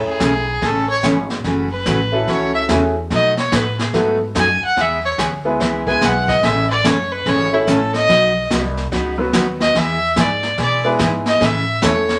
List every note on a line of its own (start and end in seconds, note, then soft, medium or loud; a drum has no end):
0.00 0.41 A3 medium
0.00 0.41 C#4 medium
0.00 0.42 E4 medium
0.00 0.42 G#4 medium
0.00 0.42 C#5 medium
0.05 0.67 G#4 medium
0.05 muted upright bass stroke soft
0.20 0.60 B1 medium
0.20 0.32 C#3 medium
0.20 0.32 E3 medium
0.20 0.32 A3 medium
0.20 0.32 C#4 medium
0.20 0.32 G#4 medium
0.20 kick soft
0.20 snare medium
0.20 hi-hat pedal medium
0.61 1.02 A1 medium
0.61 0.83 C#3 medium
0.61 0.83 E3 medium
0.61 0.84 A3 medium
0.61 0.84 C#4 medium
0.61 0.84 G#4 medium
0.61 brush sweep soft
0.61 kick soft
0.61 snare soft
0.65 0.89 A4 medium
0.89 1.03 C#5 loud
1.03 1.43 G#1 medium
1.03 1.15 C#3 medium
1.03 1.15 E3 medium
1.03 1.15 A3 medium
1.03 1.15 C#4 medium
1.03 1.16 G#4 medium
1.03 kick soft
1.03 snare medium
1.03 hi-hat pedal medium
1.30 snare soft
1.44 1.85 F#1 medium
1.44 1.67 C#3 soft
1.44 1.67 E3 medium
1.44 1.67 A3 medium
1.44 1.67 C#4 medium
1.44 1.67 F#4 medium
1.44 brush sweep soft
1.44 kick soft
1.44 snare soft
1.72 2.31 B4 medium
1.86 2.26 A1 loud
1.86 1.98 C#3 medium
1.86 1.98 E3 medium
1.86 1.98 A3 medium
1.86 1.98 C#4 medium
1.86 1.98 F#4 medium
1.86 kick soft
1.86 snare medium
1.86 hi-hat pedal medium
2.12 2.66 A3 medium
2.12 2.66 C#4 medium
2.12 2.66 E4 medium
2.12 2.66 F#4 medium
2.12 2.67 A4 medium
2.27 2.68 C#2 medium
2.27 2.50 C#3 medium
2.27 2.50 E3 medium
2.27 2.50 A3 medium
2.27 2.50 C#4 medium
2.27 2.50 F#4 medium
2.27 2.54 C#5 medium
2.27 brush sweep soft
2.27 kick soft
2.27 snare soft
2.54 2.63 E5 loud
2.68 3.09 E2 medium
2.68 2.81 C#3 medium
2.68 2.81 E3 medium
2.68 2.93 A3 medium
2.68 2.81 A3 medium
2.68 2.93 C#4 medium
2.68 2.81 C#4 medium
2.68 2.93 E4 medium
2.68 2.93 F#4 medium
2.68 2.81 F#4 medium
2.68 2.94 G#4 medium
2.68 kick soft
2.68 snare medium
2.68 hi-hat pedal medium
3.10 3.51 B2 medium
3.10 3.33 B2 soft
3.10 3.33 F#3 medium
3.10 3.33 A3 medium
3.10 3.33 D#4 medium
3.10 3.33 F#4 medium
3.10 3.37 D#5 medium
3.10 brush sweep medium
3.10 kick soft
3.10 snare soft
3.37 3.57 C#5 medium
3.37 snare soft
3.52 3.93 A2 loud
3.52 3.64 B2 medium
3.52 3.64 F#3 medium
3.52 3.64 A3 medium
3.52 3.64 D#4 medium
3.52 3.64 F#4 medium
3.52 3.79 B4 medium
3.52 kick soft
3.52 snare medium
3.52 hi-hat pedal medium
3.79 3.87 G#4 soft
3.79 snare soft
3.93 4.34 G#2 medium
3.93 4.15 B2 medium
3.93 4.15 F#3 medium
3.93 4.18 A3 medium
3.93 4.16 A3 medium
3.93 4.18 B3 medium
3.93 4.16 D#4 medium
3.93 4.18 D#4 medium
3.93 4.16 F#4 medium
3.93 4.18 F#4 medium
3.93 4.18 A4 medium
3.93 brush sweep soft
3.93 kick soft
3.93 snare soft
4.35 4.60 F#2 medium
4.35 4.47 B2 medium
4.35 4.47 F#3 medium
4.35 4.47 A3 medium
4.35 4.47 D#4 medium
4.35 4.47 F#4 medium
4.35 4.62 G#5 loud
4.35 kick soft
4.35 snare medium
4.35 hi-hat pedal medium
4.62 4.83 F#5 loud
4.62 muted upright bass stroke soft
4.76 5.17 E2 medium
4.76 4.99 E3 medium
4.76 4.99 G#3 medium
4.76 4.99 B3 medium
4.76 4.99 E4 medium
4.76 4.99 G#4 medium
4.76 brush sweep medium
4.76 kick soft
4.76 snare soft
4.81 5.05 E5 medium
5.05 5.14 C#5 medium
5.18 5.59 D2 loud
5.18 5.30 E3 medium
5.18 5.30 G#3 medium
5.18 5.30 B3 medium
5.18 5.30 E4 medium
5.18 5.30 G#4 medium
5.18 kick soft
5.18 snare medium
5.18 hi-hat pedal medium
5.45 5.84 G#3 medium
5.45 5.84 B3 medium
5.45 5.84 E4 medium
5.45 5.84 G#4 medium
5.45 5.85 B4 medium
5.60 6.00 C#2 medium
5.60 5.82 E3 medium
5.60 5.82 G#3 medium
5.60 5.82 B3 medium
5.60 5.82 E4 medium
5.60 5.82 G#4 medium
5.60 brush sweep soft
5.60 kick soft
5.60 snare soft
5.86 6.40 G#3 medium
5.86 6.40 B3 medium
5.86 6.40 E4 medium
5.86 6.40 G#4 medium
5.86 6.41 B4 medium
5.86 6.07 G#5 medium
5.86 kick soft
6.01 6.42 B1 medium
6.01 6.13 E3 medium
6.01 6.13 G#3 medium
6.01 6.13 B3 medium
6.01 6.13 E4 medium
6.01 6.13 G#4 medium
6.01 kick soft
6.01 snare medium
6.01 hi-hat pedal medium
6.05 6.31 F#5 medium
6.28 6.46 D#5 loud
6.28 kick medium
6.28 snare soft
6.42 6.83 A1 medium
6.42 6.65 C#3 soft
6.42 6.65 E3 medium
6.42 6.65 A3 medium
6.42 6.65 C#4 medium
6.42 6.65 A4 medium
6.42 6.70 E5 loud
6.42 brush sweep soft
6.42 kick soft
6.42 snare soft
6.70 6.87 D5 medium
6.84 7.25 F#1 medium
6.84 6.96 C#3 medium
6.84 6.96 E3 medium
6.84 6.96 A3 medium
6.84 6.96 C#4 medium
6.84 6.96 A4 medium
6.84 7.13 C#5 medium
6.84 kick soft
6.84 snare medium
6.84 hi-hat pedal medium
7.12 7.30 B4 medium
7.26 7.66 G#1 medium
7.26 7.48 C#3 medium
7.26 7.48 E3 medium
7.26 7.48 A3 medium
7.26 7.48 C#4 medium
7.26 7.48 A4 medium
7.26 7.55 C#5 loud
7.26 brush sweep soft
7.26 kick soft
7.26 snare soft
7.52 8.06 A3 medium
7.52 8.06 C#4 medium
7.52 8.06 E4 medium
7.52 7.71 E4 medium
7.52 8.07 A4 medium
7.52 8.06 C#5 medium
7.67 8.08 A1 medium
7.67 7.79 C#3 medium
7.67 7.79 E3 medium
7.67 7.79 A3 medium
7.67 7.79 C#4 medium
7.67 7.79 A4 medium
7.67 7.94 A4 medium
7.67 kick soft
7.67 snare medium
7.67 hi-hat pedal medium
7.94 8.47 D#5 loud
7.94 snare soft
8.09 8.49 B1 medium
8.09 8.31 B2 soft
8.09 8.31 F#3 medium
8.09 8.31 B3 medium
8.09 8.31 D#4 medium
8.09 8.31 F#4 medium
8.09 brush sweep soft
8.09 kick soft
8.09 snare soft
8.50 8.91 C2 loud
8.50 8.62 B2 medium
8.50 8.62 F#3 medium
8.50 8.62 B3 medium
8.50 8.62 D#4 medium
8.50 8.62 F#4 medium
8.50 kick soft
8.50 snare medium
8.50 hi-hat pedal medium
8.77 snare soft
8.92 9.32 C#2 medium
8.92 9.14 B2 medium
8.92 9.14 F#3 medium
8.92 9.14 B3 medium
8.92 9.14 D#4 medium
8.92 9.14 F#4 medium
8.92 brush sweep soft
8.92 kick soft
8.92 snare soft
9.18 9.72 F#3 medium
9.18 9.72 B3 medium
9.18 9.72 D#4 medium
9.18 9.72 F#4 medium
9.18 9.73 B4 medium
9.33 9.74 D#2 medium
9.33 9.45 B2 medium
9.33 9.45 F#3 medium
9.33 9.45 B3 medium
9.33 9.45 D#4 medium
9.33 9.45 F#4 medium
9.33 kick soft
9.33 snare medium
9.33 hi-hat pedal medium
9.60 9.80 D#5 medium
9.60 snare soft
9.75 10.15 E2 medium
9.75 9.97 E3 medium
9.75 9.97 G#3 medium
9.75 9.97 B3 medium
9.75 9.97 E4 medium
9.75 9.97 G#4 medium
9.75 10.21 E5 loud
9.75 brush sweep soft
9.75 kick soft
9.75 snare soft
10.16 10.57 G#2 medium
10.16 10.28 E3 medium
10.16 10.28 G#3 medium
10.16 10.28 B3 medium
10.16 10.28 E4 medium
10.16 10.28 G#4 medium
10.16 10.60 D5 medium
10.16 kick soft
10.16 snare medium
10.16 hi-hat pedal medium
10.43 snare soft
10.58 10.98 B2 medium
10.58 10.80 E3 medium
10.58 10.80 G#3 medium
10.58 10.80 B3 medium
10.58 10.80 E4 medium
10.58 10.80 G#4 medium
10.58 brush sweep soft
10.58 kick soft
10.58 snare soft
10.62 10.85 D5 medium
10.84 11.38 G#3 medium
10.84 11.38 B3 medium
10.84 11.38 E4 medium
10.84 11.38 G#4 medium
10.84 11.38 B4 medium
10.99 11.40 G#2 medium
10.99 11.11 E3 medium
10.99 11.11 G#3 medium
10.99 11.11 B3 medium
10.99 11.11 E4 medium
10.99 11.11 G#4 medium
10.99 kick soft
10.99 snare medium
10.99 hi-hat pedal medium
11.26 11.46 D#5 medium
11.26 snare soft
11.39 11.81 A2 medium
11.39 11.62 C#3 medium
11.39 11.62 E3 medium
11.39 11.62 A3 medium
11.39 11.62 C#4 medium
11.39 11.63 A4 medium
11.39 brush sweep medium
11.39 kick soft
11.39 snare soft
11.45 11.87 E5 loud
11.81 12.19 E2 loud
11.81 11.94 C#3 medium
11.81 11.94 E3 medium
11.81 12.19 A3 medium
11.81 11.94 A3 medium
11.81 12.19 C#4 medium
11.81 11.94 C#4 medium
11.81 12.19 E4 medium
11.81 11.94 A4 medium
11.81 12.19 A4 medium
11.81 12.19 C#5 medium
11.81 kick soft
11.81 snare medium
11.81 hi-hat pedal medium
11.86 12.19 C#5 medium
12.09 snare soft